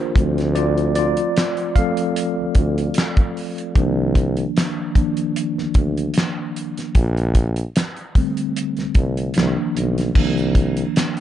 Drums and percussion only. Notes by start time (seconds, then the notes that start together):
0.16 kick, closed hi-hat
0.38 snare, closed hi-hat
0.56 closed hi-hat
0.78 closed hi-hat
0.95 closed hi-hat
1.17 closed hi-hat
1.37 snare, clap, closed hi-hat
1.57 closed hi-hat
1.76 kick, closed hi-hat
1.97 closed hi-hat
2.16 closed hi-hat
2.55 kick, closed hi-hat
2.78 closed hi-hat
2.94 snare, closed hi-hat
2.99 clap
3.17 kick, closed hi-hat
3.37 open hi-hat
3.58 closed hi-hat
3.75 kick, closed hi-hat
4.15 kick, closed hi-hat
4.37 closed hi-hat
4.57 snare, clap, closed hi-hat
4.95 kick, closed hi-hat
5.17 closed hi-hat
5.36 closed hi-hat
5.58 snare
5.74 kick, closed hi-hat
5.97 closed hi-hat
6.14 snare, closed hi-hat
6.18 clap
6.56 closed hi-hat
6.78 snare, closed hi-hat
6.95 kick, closed hi-hat
7.17 closed hi-hat
7.35 kick, closed hi-hat
7.56 closed hi-hat
7.76 snare, clap, closed hi-hat
7.97 closed hi-hat
8.15 kick, closed hi-hat
8.37 closed hi-hat
8.56 closed hi-hat
8.77 snare, closed hi-hat
8.95 kick, closed hi-hat
9.17 closed hi-hat
9.34 snare, closed hi-hat
9.38 clap
9.77 closed hi-hat
9.98 snare, closed hi-hat
10.15 kick, crash
10.37 closed hi-hat
10.55 kick, closed hi-hat
10.77 closed hi-hat
10.96 snare, clap, closed hi-hat
11.17 closed hi-hat